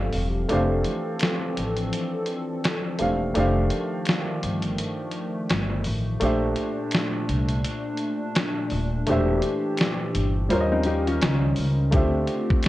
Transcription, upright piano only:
0, 0, Header, 1, 2, 480
1, 0, Start_track
1, 0, Key_signature, -1, "major"
1, 0, Tempo, 714286
1, 333, Time_signature, 4, 2, 24, 8
1, 8524, End_track
2, 0, Start_track
2, 0, Title_t, "Upright piano"
2, 0, Program_c, 0, 0
2, 0, Control_c, 0, 64, 127
2, 0, Note_on_c, 0, 55, 48
2, 0, Note_on_c, 0, 57, 45
2, 0, Note_on_c, 0, 64, 53
2, 0, Note_on_c, 0, 65, 66
2, 0, Note_on_c, 0, 76, 88
2, 0, Note_on_c, 0, 77, 87
2, 74, Note_off_c, 0, 65, 0
2, 326, Note_off_c, 0, 57, 0
2, 326, Note_on_c, 0, 57, 69
2, 335, Note_on_c, 0, 62, 65
2, 342, Control_c, 0, 64, 0
2, 343, Note_off_c, 0, 64, 0
2, 344, Note_on_c, 0, 67, 59
2, 347, Note_off_c, 0, 55, 0
2, 348, Note_off_c, 0, 76, 0
2, 349, Note_off_c, 0, 77, 0
2, 352, Note_on_c, 0, 72, 69
2, 361, Note_on_c, 0, 77, 67
2, 454, Control_c, 0, 64, 127
2, 1982, Note_off_c, 0, 57, 0
2, 1987, Note_off_c, 0, 62, 0
2, 1992, Note_off_c, 0, 67, 0
2, 1996, Note_off_c, 0, 72, 0
2, 2000, Note_off_c, 0, 77, 0
2, 2008, Note_on_c, 0, 57, 57
2, 2012, Note_on_c, 0, 62, 48
2, 2017, Note_on_c, 0, 67, 43
2, 2021, Note_on_c, 0, 72, 47
2, 2026, Note_on_c, 0, 77, 68
2, 2235, Note_off_c, 0, 57, 0
2, 2244, Note_off_c, 0, 62, 0
2, 2245, Note_on_c, 0, 57, 65
2, 2252, Note_off_c, 0, 67, 0
2, 2254, Note_on_c, 0, 62, 67
2, 2257, Note_off_c, 0, 72, 0
2, 2259, Note_off_c, 0, 77, 0
2, 2260, Control_c, 0, 64, 0
2, 2262, Note_on_c, 0, 67, 65
2, 2270, Note_on_c, 0, 72, 60
2, 2279, Note_on_c, 0, 77, 71
2, 2379, Control_c, 0, 64, 127
2, 4142, Note_off_c, 0, 57, 0
2, 4146, Note_off_c, 0, 62, 0
2, 4151, Note_off_c, 0, 67, 0
2, 4155, Note_off_c, 0, 72, 0
2, 4159, Note_off_c, 0, 77, 0
2, 4167, Note_on_c, 0, 57, 72
2, 4174, Note_on_c, 0, 62, 59
2, 4181, Control_c, 0, 64, 0
2, 4183, Note_on_c, 0, 67, 57
2, 4192, Note_on_c, 0, 72, 65
2, 4200, Note_on_c, 0, 76, 72
2, 4300, Control_c, 0, 64, 127
2, 6063, Note_off_c, 0, 57, 0
2, 6067, Note_off_c, 0, 62, 0
2, 6071, Note_off_c, 0, 67, 0
2, 6076, Note_off_c, 0, 72, 0
2, 6080, Note_off_c, 0, 76, 0
2, 6091, Note_on_c, 0, 57, 64
2, 6100, Note_on_c, 0, 62, 59
2, 6101, Control_c, 0, 64, 0
2, 6108, Note_on_c, 0, 67, 60
2, 6117, Note_on_c, 0, 72, 64
2, 6125, Note_on_c, 0, 76, 77
2, 6198, Control_c, 0, 64, 127
2, 7033, Note_off_c, 0, 57, 0
2, 7037, Note_off_c, 0, 62, 0
2, 7042, Note_off_c, 0, 67, 0
2, 7046, Note_off_c, 0, 72, 0
2, 7047, Note_on_c, 0, 55, 66
2, 7050, Note_off_c, 0, 76, 0
2, 7056, Note_on_c, 0, 72, 68
2, 7062, Control_c, 0, 64, 0
2, 7064, Note_on_c, 0, 65, 60
2, 7072, Note_on_c, 0, 70, 66
2, 7081, Note_on_c, 0, 73, 63
2, 7120, Note_off_c, 0, 73, 0
2, 7124, Note_on_c, 0, 75, 79
2, 7175, Control_c, 0, 64, 127
2, 7991, Note_off_c, 0, 55, 0
2, 7995, Note_off_c, 0, 72, 0
2, 7999, Note_off_c, 0, 65, 0
2, 8003, Note_on_c, 0, 57, 68
2, 8004, Note_off_c, 0, 70, 0
2, 8011, Note_on_c, 0, 62, 60
2, 8021, Note_on_c, 0, 67, 67
2, 8022, Control_c, 0, 64, 0
2, 8029, Note_on_c, 0, 72, 60
2, 8030, Note_off_c, 0, 75, 0
2, 8037, Note_on_c, 0, 76, 70
2, 8138, Control_c, 0, 64, 127
2, 8524, Note_off_c, 0, 57, 0
2, 8524, Note_off_c, 0, 62, 0
2, 8524, Note_off_c, 0, 67, 0
2, 8524, Note_off_c, 0, 72, 0
2, 8524, Note_off_c, 0, 76, 0
2, 8524, End_track
0, 0, End_of_file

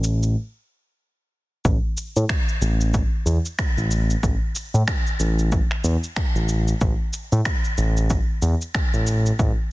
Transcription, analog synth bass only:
0, 0, Header, 1, 2, 480
1, 0, Start_track
1, 0, Tempo, 645161
1, 1228, Time_signature, 4, 2, 24, 8
1, 7232, End_track
2, 0, Start_track
2, 0, Title_t, "Analog synth bass"
2, 0, Program_c, 0, 38
2, 0, Note_on_c, 0, 33, 83
2, 267, Note_off_c, 0, 33, 0
2, 1227, Note_on_c, 0, 33, 97
2, 1320, Note_off_c, 0, 33, 0
2, 1610, Note_on_c, 0, 45, 93
2, 1673, Note_off_c, 0, 45, 0
2, 1946, Note_on_c, 0, 33, 92
2, 2249, Note_off_c, 0, 33, 0
2, 2424, Note_on_c, 0, 40, 95
2, 2519, Note_off_c, 0, 40, 0
2, 2808, Note_on_c, 0, 33, 88
2, 3092, Note_off_c, 0, 33, 0
2, 3149, Note_on_c, 0, 33, 93
2, 3241, Note_off_c, 0, 33, 0
2, 3528, Note_on_c, 0, 45, 102
2, 3593, Note_off_c, 0, 45, 0
2, 3866, Note_on_c, 0, 33, 90
2, 4169, Note_off_c, 0, 33, 0
2, 4345, Note_on_c, 0, 40, 95
2, 4439, Note_off_c, 0, 40, 0
2, 4728, Note_on_c, 0, 33, 86
2, 5012, Note_off_c, 0, 33, 0
2, 5068, Note_on_c, 0, 33, 100
2, 5160, Note_off_c, 0, 33, 0
2, 5448, Note_on_c, 0, 45, 101
2, 5512, Note_off_c, 0, 45, 0
2, 5787, Note_on_c, 0, 33, 89
2, 6090, Note_off_c, 0, 33, 0
2, 6266, Note_on_c, 0, 40, 89
2, 6359, Note_off_c, 0, 40, 0
2, 6649, Note_on_c, 0, 33, 91
2, 6933, Note_off_c, 0, 33, 0
2, 6988, Note_on_c, 0, 33, 102
2, 7080, Note_off_c, 0, 33, 0
2, 7232, End_track
0, 0, End_of_file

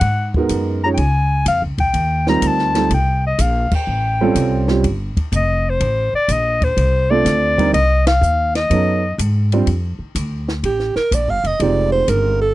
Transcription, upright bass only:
0, 0, Header, 1, 3, 480
1, 0, Start_track
1, 0, Key_signature, -2, "major"
1, 0, Tempo, 482703
1, 20, Time_signature, 4, 2, 24, 8
1, 12472, End_track
2, 0, Start_track
2, 0, Title_t, "Upright bass"
2, 0, Program_c, 0, 32
2, 10, Note_on_c, 0, 44, 76
2, 480, Note_off_c, 0, 44, 0
2, 491, Note_on_c, 0, 42, 80
2, 960, Note_off_c, 0, 42, 0
2, 966, Note_on_c, 0, 37, 74
2, 1437, Note_off_c, 0, 37, 0
2, 1450, Note_on_c, 0, 41, 86
2, 1611, Note_on_c, 0, 37, 56
2, 1626, Note_off_c, 0, 41, 0
2, 1762, Note_off_c, 0, 37, 0
2, 1768, Note_on_c, 0, 35, 65
2, 1919, Note_off_c, 0, 35, 0
2, 1925, Note_on_c, 0, 39, 84
2, 2396, Note_off_c, 0, 39, 0
2, 2405, Note_on_c, 0, 38, 85
2, 2876, Note_off_c, 0, 38, 0
2, 2884, Note_on_c, 0, 36, 80
2, 3356, Note_off_c, 0, 36, 0
2, 3366, Note_on_c, 0, 34, 90
2, 3675, Note_off_c, 0, 34, 0
2, 3849, Note_on_c, 0, 33, 83
2, 4318, Note_off_c, 0, 33, 0
2, 4325, Note_on_c, 0, 36, 82
2, 4796, Note_off_c, 0, 36, 0
2, 4809, Note_on_c, 0, 31, 80
2, 5117, Note_off_c, 0, 31, 0
2, 5290, Note_on_c, 0, 29, 91
2, 5759, Note_off_c, 0, 29, 0
2, 5771, Note_on_c, 0, 33, 91
2, 6078, Note_off_c, 0, 33, 0
2, 6248, Note_on_c, 0, 34, 89
2, 6718, Note_off_c, 0, 34, 0
2, 6729, Note_on_c, 0, 36, 81
2, 7198, Note_off_c, 0, 36, 0
2, 7209, Note_on_c, 0, 38, 88
2, 7678, Note_off_c, 0, 38, 0
2, 7691, Note_on_c, 0, 36, 83
2, 8159, Note_off_c, 0, 36, 0
2, 8168, Note_on_c, 0, 39, 89
2, 8638, Note_off_c, 0, 39, 0
2, 8652, Note_on_c, 0, 42, 76
2, 9120, Note_off_c, 0, 42, 0
2, 9132, Note_on_c, 0, 44, 89
2, 9600, Note_off_c, 0, 44, 0
2, 9614, Note_on_c, 0, 41, 81
2, 9920, Note_off_c, 0, 41, 0
2, 10092, Note_on_c, 0, 38, 87
2, 10561, Note_off_c, 0, 38, 0
2, 10574, Note_on_c, 0, 33, 71
2, 10880, Note_off_c, 0, 33, 0
2, 11052, Note_on_c, 0, 34, 88
2, 11211, Note_off_c, 0, 34, 0
2, 11211, Note_on_c, 0, 31, 55
2, 11367, Note_off_c, 0, 31, 0
2, 11373, Note_on_c, 0, 29, 67
2, 11524, Note_off_c, 0, 29, 0
2, 11531, Note_on_c, 0, 29, 85
2, 12000, Note_off_c, 0, 29, 0
2, 12012, Note_on_c, 0, 31, 88
2, 12472, Note_off_c, 0, 31, 0
2, 12472, End_track
3, 0, Start_track
3, 0, Title_t, "Muted upright bass strokes"
3, 3696, Note_on_c, 9, 29, 40
3, 3796, Note_off_c, 9, 29, 0
3, 5139, Note_on_c, 9, 29, 41
3, 5239, Note_off_c, 9, 29, 0
3, 6098, Note_on_c, 9, 29, 43
3, 6197, Note_off_c, 9, 29, 0
3, 9930, Note_on_c, 9, 29, 39
3, 10030, Note_off_c, 9, 29, 0
3, 10901, Note_on_c, 9, 29, 39
3, 11000, Note_off_c, 9, 29, 0
3, 12472, End_track
0, 0, End_of_file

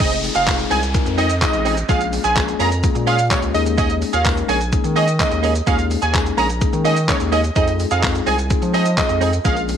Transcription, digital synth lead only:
0, 0, Header, 1, 2, 480
1, 0, Start_track
1, 0, Key_signature, -4, "minor"
1, 0, Tempo, 472441
1, 2, Time_signature, 4, 2, 24, 8
1, 9927, End_track
2, 0, Start_track
2, 0, Title_t, "Digital synth lead"
2, 0, Program_c, 0, 84
2, 1, Note_on_c, 0, 75, 113
2, 169, Note_off_c, 0, 75, 0
2, 361, Note_on_c, 0, 77, 75
2, 530, Note_off_c, 0, 77, 0
2, 721, Note_on_c, 0, 80, 87
2, 805, Note_off_c, 0, 80, 0
2, 1201, Note_on_c, 0, 75, 83
2, 1369, Note_off_c, 0, 75, 0
2, 1442, Note_on_c, 0, 75, 93
2, 1780, Note_off_c, 0, 75, 0
2, 1922, Note_on_c, 0, 77, 107
2, 2090, Note_off_c, 0, 77, 0
2, 2282, Note_on_c, 0, 80, 77
2, 2450, Note_off_c, 0, 80, 0
2, 2642, Note_on_c, 0, 82, 92
2, 2726, Note_off_c, 0, 82, 0
2, 3121, Note_on_c, 0, 77, 89
2, 3290, Note_off_c, 0, 77, 0
2, 3363, Note_on_c, 0, 73, 83
2, 3446, Note_off_c, 0, 73, 0
2, 3601, Note_on_c, 0, 75, 84
2, 3686, Note_off_c, 0, 75, 0
2, 3841, Note_on_c, 0, 75, 114
2, 4010, Note_off_c, 0, 75, 0
2, 4201, Note_on_c, 0, 77, 79
2, 4370, Note_off_c, 0, 77, 0
2, 4561, Note_on_c, 0, 80, 89
2, 4645, Note_off_c, 0, 80, 0
2, 5042, Note_on_c, 0, 75, 85
2, 5210, Note_off_c, 0, 75, 0
2, 5282, Note_on_c, 0, 75, 98
2, 5620, Note_off_c, 0, 75, 0
2, 5761, Note_on_c, 0, 77, 106
2, 5930, Note_off_c, 0, 77, 0
2, 6122, Note_on_c, 0, 80, 78
2, 6290, Note_off_c, 0, 80, 0
2, 6480, Note_on_c, 0, 82, 89
2, 6565, Note_off_c, 0, 82, 0
2, 6961, Note_on_c, 0, 75, 95
2, 7129, Note_off_c, 0, 75, 0
2, 7202, Note_on_c, 0, 73, 86
2, 7286, Note_off_c, 0, 73, 0
2, 7442, Note_on_c, 0, 75, 80
2, 7526, Note_off_c, 0, 75, 0
2, 7682, Note_on_c, 0, 75, 113
2, 7850, Note_off_c, 0, 75, 0
2, 8042, Note_on_c, 0, 77, 75
2, 8210, Note_off_c, 0, 77, 0
2, 8402, Note_on_c, 0, 80, 85
2, 8486, Note_off_c, 0, 80, 0
2, 8882, Note_on_c, 0, 75, 86
2, 9050, Note_off_c, 0, 75, 0
2, 9122, Note_on_c, 0, 75, 89
2, 9460, Note_off_c, 0, 75, 0
2, 9602, Note_on_c, 0, 77, 106
2, 9770, Note_off_c, 0, 77, 0
2, 9927, End_track
0, 0, End_of_file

